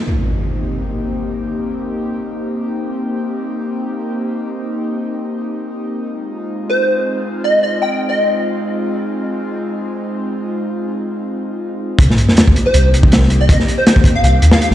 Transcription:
0.07 6.00 A#3 medium
0.07 6.00 C4 medium
0.07 11.96 D#4 medium
0.07 6.00 G4 medium
0.07 impact medium
6.04 11.96 G#3 medium
6.04 11.96 C4 medium
6.04 11.96 F4 medium
6.70 6.92 C5 medium
7.44 7.62 D#5 medium
7.63 7.80 D#5 medium
7.82 8.04 G5 medium
8.09 8.46 D#5 loud
11.99 12.08 C2 loud
11.99 14.74 A#3 medium
11.99 14.74 C4 medium
11.99 14.74 D#4 medium
11.99 14.74 G4 medium
11.99 kick loud
11.99 closed hi-hat medium
11.99 sub drop medium
12.10 snare soft
12.18 closed hi-hat medium
12.29 snare medium
12.37 snare loud
12.37 closed hi-hat medium
12.48 kick medium
12.56 closed hi-hat medium
12.66 12.88 C5 loud
12.74 13.48 C2 medium
12.74 closed hi-hat medium
12.94 closed hi-hat medium
13.03 kick loud
13.12 snare loud
13.12 closed hi-hat medium
13.22 snare soft
13.30 closed hi-hat medium
13.41 13.63 D#5 loud
13.49 13.58 C2 loud
13.49 kick loud
13.49 closed hi-hat medium
13.60 snare soft
13.68 closed hi-hat medium
13.78 13.83 C5 medium
13.87 13.93 C5 medium
13.87 snare loud
13.87 closed hi-hat medium
13.96 kick medium
14.04 kick loud
14.04 closed hi-hat medium
14.15 14.21 F5 medium
14.23 14.40 C2 loud
14.23 14.30 F5 medium
14.23 closed hi-hat medium
14.42 14.51 D#2 loud
14.42 closed hi-hat medium
14.52 14.58 F5 medium
14.52 snare loud
14.61 14.68 F5 medium
14.61 closed hi-hat medium
14.71 14.74 G1 loud
14.71 snare soft

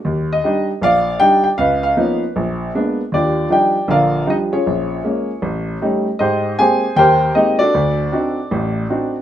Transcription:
0.05 0.38 D#2 medium
0.33 0.67 D#5 medium
0.44 0.69 G3 medium
0.44 0.70 D4 medium
0.44 0.70 D#4 medium
0.82 1.15 A#1 medium
0.82 1.55 D5 medium
0.82 1.18 F5 loud
1.20 1.46 G3 medium
1.20 1.46 D4 soft
1.20 1.46 D#4 medium
1.20 1.42 G5 loud
1.44 1.49 G5 medium
1.58 1.91 C#2 medium
1.58 2.32 B4 medium
1.58 1.82 F5 medium
1.83 2.19 F5 medium
1.97 2.22 F3 medium
1.97 2.23 A#3 medium
1.97 2.23 B3 soft
1.97 2.23 C#4 medium
1.97 2.23 D#4 medium
2.36 2.69 A#1 medium
2.75 3.00 G#3 medium
2.75 3.00 A#3 soft
2.75 3.00 B3 soft
2.75 3.00 D4 medium
3.12 3.45 D#2 medium
3.12 3.48 D4 soft
3.12 3.49 F4 medium
3.12 3.49 G4 medium
3.12 3.49 D5 medium
3.49 3.75 F3 soft
3.49 3.76 G3 soft
3.49 3.76 D4 soft
3.49 3.76 D#4 medium
3.49 3.87 G4 medium
3.49 3.87 D5 medium
3.49 3.87 G5 medium
3.88 4.21 A#1 medium
3.88 4.21 D3 medium
3.88 4.26 F4 medium
3.88 4.26 A#4 medium
3.88 4.26 D5 medium
3.88 4.25 F5 medium
4.26 4.53 F3 soft
4.26 4.52 G3 soft
4.26 4.53 D4 soft
4.26 4.29 D#4 medium
4.30 4.36 D#4 medium
4.30 4.35 D#5 medium
4.52 5.03 C#4 medium
4.52 5.39 F4 medium
4.52 5.39 G#4 medium
4.52 6.02 C#5 medium
4.67 4.99 A#1 medium
5.04 5.30 G#3 medium
5.04 5.30 A#3 medium
5.04 5.30 C#4 medium
5.42 5.75 A1 medium
5.82 6.07 G3 medium
5.82 6.07 A3 soft
5.82 6.07 C#4 soft
5.82 6.07 D#4 medium
6.19 6.53 G#2 medium
6.19 6.56 D#4 medium
6.19 6.56 G4 medium
6.19 6.56 C5 medium
6.19 6.59 D#5 medium
6.59 6.84 G#3 soft
6.59 6.84 A#3 soft
6.59 6.84 C4 soft
6.59 6.85 G4 medium
6.59 6.95 G#4 medium
6.59 6.95 C5 medium
6.59 6.94 G#5 medium
6.96 7.29 D#2 medium
6.96 7.34 G4 medium
6.96 7.33 A#4 medium
6.96 7.33 C5 medium
6.96 7.36 G5 loud
7.35 7.61 G#3 soft
7.35 7.61 A#3 medium
7.35 7.61 C4 soft
7.35 7.58 D#4 medium
7.35 7.62 G4 medium
7.35 7.58 D#5 medium
7.59 8.11 D4 medium
7.59 8.12 F#4 medium
7.59 9.10 A4 medium
7.59 9.09 D5 loud
7.74 8.07 D2 medium
8.12 8.38 C4 soft
8.12 8.38 D4 medium
8.12 8.38 D#4 soft
8.12 8.38 F#4 medium
8.51 8.84 A1 medium
8.51 8.84 A2 medium
8.90 9.15 C4 soft
8.90 9.15 D4 soft
8.90 9.15 D#4 soft
8.90 9.15 F#4 medium

